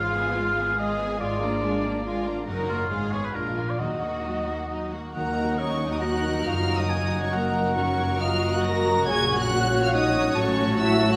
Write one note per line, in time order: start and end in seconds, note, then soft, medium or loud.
0.00 2.44 G#1 medium
0.00 1.20 G#2 medium
0.00 0.15 G#3 medium
0.00 0.15 F4 medium
0.00 0.78 F4 medium
0.00 0.78 G#4 soft
0.00 0.15 F5 soft
0.00 0.75 F5 medium
0.16 0.37 B3 medium
0.16 0.57 B3 soft
0.16 0.37 G#4 soft
0.16 0.38 G#5 soft
0.37 0.58 G#3 soft
0.37 0.59 F4 soft
0.37 0.99 F4 soft
0.37 0.59 F5 soft
0.57 0.79 B3 soft
0.57 1.23 B3 soft
0.57 0.80 G#4 soft
0.57 0.80 G#5 soft
0.78 0.98 G#3 soft
0.78 0.99 F4 soft
0.78 2.50 G#4 soft
0.78 1.20 G#4 medium
0.78 1.20 D#5 medium
0.78 0.99 F5 soft
0.99 1.21 B3 soft
0.99 1.62 F4 soft
0.99 1.21 G#4 medium
0.99 1.21 G#5 soft
1.19 2.50 G#2 medium
1.19 1.40 G#3 medium
1.19 1.41 F4 medium
1.19 1.63 F4 medium
1.19 2.45 D5 medium
1.19 1.41 G#5 soft
1.41 1.63 A#3 soft
1.41 1.83 A#3 medium
1.41 1.64 D4 soft
1.41 1.64 A#5 soft
1.62 1.84 G#3 soft
1.62 2.05 D4 medium
1.62 2.25 F4 soft
1.62 1.85 F4 soft
1.62 1.85 G#5 soft
1.84 2.06 A#3 medium
1.84 2.92 A#3 soft
1.84 2.06 D4 soft
1.84 2.06 A#5 soft
2.05 2.25 G#3 soft
2.05 2.47 F4 medium
2.05 2.26 F4 soft
2.05 2.68 A#4 soft
2.05 2.26 G#5 soft
2.26 2.48 A#3 soft
2.26 2.48 D4 soft
2.26 2.50 F4 soft
2.26 2.48 A#5 soft
2.47 2.91 F#1 medium
2.47 2.93 F#2 medium
2.47 2.68 F#3 soft
2.47 2.68 D#4 soft
2.47 2.90 A#4 medium
2.47 2.68 F#5 soft
2.69 2.91 A#3 soft
2.69 2.93 D#4 soft
2.69 3.13 F4 medium
2.69 2.91 F#4 soft
2.69 2.93 A#4 soft
2.69 2.91 A#5 soft
2.90 3.35 G#1 soft
2.90 3.37 G#2 soft
2.90 3.11 G#3 soft
2.90 3.12 F4 soft
2.90 3.34 G#4 soft
2.90 3.12 F5 soft
3.12 3.35 B3 soft
3.12 3.82 F4 soft
3.12 3.56 G#4 soft
3.12 3.35 G#4 soft
3.12 3.26 C#5 medium
3.12 3.35 G#5 soft
3.24 3.36 B4 soft
3.34 3.79 A#1 medium
3.34 3.82 A#2 soft
3.34 3.56 G#3 soft
3.34 3.56 D4 soft
3.34 3.80 F4 soft
3.34 3.71 A#4 medium
3.34 3.56 A#5 soft
3.57 3.80 A#3 soft
3.57 3.82 D4 soft
3.57 3.80 F4 soft
3.57 3.82 G#4 soft
3.57 3.80 G#5 soft
3.70 3.79 D5 medium
3.79 4.94 D#2 soft
3.79 5.14 D#3 soft
3.79 4.01 F#3 soft
3.79 4.01 D#4 soft
3.79 4.93 F#4 medium
3.79 4.00 D#5 soft
3.79 4.90 D#5 medium
4.02 4.25 A#3 soft
4.02 4.46 D#4 soft
4.02 4.26 F#4 soft
4.02 4.25 F#5 soft
4.24 4.48 F#3 soft
4.24 4.47 D#4 soft
4.24 4.92 F#4 soft
4.24 4.47 D#5 soft
4.47 4.70 A#3 soft
4.47 5.26 D#4 soft
4.47 4.70 F#4 soft
4.47 4.70 F#5 soft
4.70 4.91 F#3 soft
4.70 4.91 D#4 soft
4.70 5.47 A#4 soft
4.70 4.91 D#5 soft
4.92 5.15 A#3 soft
4.92 5.13 F#4 soft
4.92 5.37 F#4 soft
4.92 5.15 F#5 soft
5.14 6.42 D#2 medium
5.14 6.48 D#3 medium
5.14 7.73 F#3 medium
5.14 5.56 A#3 medium
5.14 7.73 D#4 medium
5.14 7.72 F#4 medium
5.14 7.72 A#4 medium
5.14 5.56 A#4 medium
5.14 5.60 F#5 medium
5.14 5.56 A#5 medium
5.27 6.67 D#4 soft
5.38 6.24 F#4 medium
5.48 6.13 A#4 soft
5.59 5.91 C#4 medium
5.59 5.92 C#5 medium
5.59 6.01 D#5 medium
5.59 6.02 D#5 soft
5.59 5.91 C#6 medium
5.70 5.90 F#5 soft
5.81 9.71 A#5 medium
5.91 6.02 D#4 soft
5.91 6.02 D#5 medium
5.91 7.10 F#5 soft
5.91 6.03 D#6 medium
6.01 6.45 F#4 medium
6.01 7.00 D#5 soft
6.01 6.46 F#5 medium
6.01 6.91 A#5 medium
6.01 6.45 F#6 medium
6.14 6.89 A#4 soft
6.25 6.78 F#4 soft
6.36 6.56 A#3 soft
6.45 9.03 F#1 medium
6.45 7.75 F#2 medium
6.45 9.03 F#2 medium
6.45 6.78 F4 medium
6.45 6.79 F5 medium
6.45 6.79 F6 medium
6.57 7.97 A#3 soft
6.68 7.54 D#4 medium
6.78 7.21 D#4 medium
6.78 7.44 F#4 soft
6.78 7.23 D#5 medium
6.78 7.22 D#6 medium
6.90 7.32 A#4 medium
6.90 7.32 G#5 medium
7.01 7.21 D#5 soft
7.12 8.41 F#5 soft
7.21 7.33 C#4 medium
7.21 7.33 C#5 medium
7.21 7.78 D#5 soft
7.21 7.33 C#6 medium
7.32 7.75 A#3 medium
7.32 7.76 A#4 medium
7.32 8.29 A#4 medium
7.32 8.18 F#5 medium
7.32 7.76 A#5 medium
7.45 8.08 F#4 soft
7.55 7.79 D#4 soft
7.66 7.86 F#3 soft
7.75 9.09 F#2 medium
7.75 10.32 F#3 medium
7.75 8.20 C#4 medium
7.75 10.32 F#4 medium
7.75 9.03 A#4 medium
7.75 8.20 C#5 medium
7.75 8.18 C#6 medium
7.87 8.85 F#3 medium
7.98 8.19 A#3 medium
8.09 8.63 F#4 soft
8.19 8.74 A#3 soft
8.19 8.53 F4 medium
8.19 9.09 D#5 medium
8.19 8.52 F5 medium
8.19 8.52 F6 medium
8.31 8.52 A#4 medium
8.42 9.70 F#5 medium
8.52 8.57 F#4 medium
8.52 10.38 A#4 medium
8.52 8.64 F#5 medium
8.52 8.64 F#6 medium
8.63 9.38 F#4 medium
8.63 9.06 A#4 medium
8.63 9.07 A#5 medium
8.63 9.07 A#6 medium
8.75 10.24 A#3 medium
8.86 9.17 F#3 medium
8.97 9.09 C#3 soft
9.06 10.33 A#1 medium
9.06 10.34 A#2 medium
9.06 10.38 A#2 medium
9.06 9.39 G#4 medium
9.06 9.50 C#5 medium
9.06 11.16 C#5 medium
9.06 9.39 G#5 medium
9.06 9.39 G#6 loud
9.18 10.13 F#3 medium
9.28 9.48 C#4 medium
9.39 9.82 F#4 medium
9.39 9.91 F#4 medium
9.39 9.83 F#5 medium
9.39 9.82 F#6 loud
9.50 10.02 C#4 medium
9.50 10.34 F#5 medium
9.60 9.81 C#5 medium
9.71 10.99 F#5 medium
9.82 9.93 F4 medium
9.82 10.89 C#5 medium
9.82 9.93 F5 medium
9.82 9.88 F6 medium
9.92 10.35 D#4 medium
9.92 10.67 F#4 medium
9.92 10.36 D#5 medium
9.92 10.36 D#6 medium
10.03 10.56 C#4 medium
10.15 10.45 F#3 medium
10.25 10.38 A#3 soft
10.35 11.16 A1 medium
10.35 11.16 A2 medium
10.35 11.16 F#3 medium
10.35 10.79 C#4 medium
10.35 11.16 F#4 medium
10.35 10.79 C#5 medium
10.35 11.16 A5 medium
10.35 10.79 C#6 medium
10.47 11.16 F#3 medium
10.58 10.78 C#4 medium
10.68 11.16 F#4 medium
10.79 11.16 C#4 medium
10.79 11.11 E4 medium
10.79 11.11 E5 loud
10.79 11.11 E6 medium
10.90 11.10 C#5 medium
11.00 11.16 F#5 medium
11.11 11.16 F#4 medium
11.11 11.16 C#5 medium
11.11 11.16 F#5 medium
11.11 11.16 F#6 medium